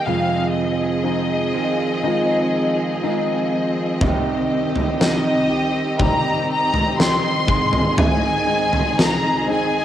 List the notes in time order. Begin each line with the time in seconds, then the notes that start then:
Already playing: D#5
0.05 F2 C3 D#3 F3 G#3 C4 F4 G#4 F5
0.54 D#5
1.03 F3 G#3 D#4
1.54 D#3 G#3 C4 F4
2.03 D#3 F3 G#3 C4 D#4
2.07 F4
3.02 D#3 F3 G#3 C4 D#4
3.07 F4
4.01 C2 C3 D#3 C4 D#4 G4, kick, floor tom
4.76 floor tom
4.99 G3 C4 D#4 D#5, snare
5.50 C4 D#4 G4
5.99 D#3 G3 C4 D#4 A#5, kick, floor tom
6.04 G4
6.53 A#5
6.74 floor tom
6.98 D#3 G3 C4 D#4 G4 C6, snare
7.48 G#2 D#3 G#3 C4 D#4 G#4, kick
7.53 G#2
7.73 floor tom
7.98 G#5, floor tom
8.46 G#3 C4 D#4
8.73 floor tom
8.99 A#5, snare
9.47 G#3 C4 D#4 G#4
9.51 G#5